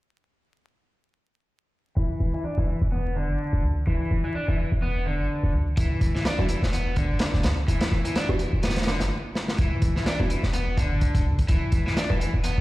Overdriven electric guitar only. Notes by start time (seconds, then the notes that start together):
1.96 E3
2.34 E3
2.44 D4
2.58 E3
2.68 E3
2.92 B3
3.16 D3
3.87 E3
4.24 E3
4.35 D4
4.48 E3
4.58 E3
4.82 B3
5.06 D3
5.77 E3
6.15 E3
6.25 D4
6.39 E3
6.49 E3
6.73 B3
6.96 D3
7.68 E3
8.05 E3
8.16 D4
8.29 E3
8.39 E3
8.63 B3
8.87 D3
9.59 E3
9.96 E3
10.06 D4
10.20 E3
10.30 E3
10.54 B3
10.78 D3
11.49 E3
11.86 E3
11.97 D4
12.10 E3
12.20 E3
12.44 B3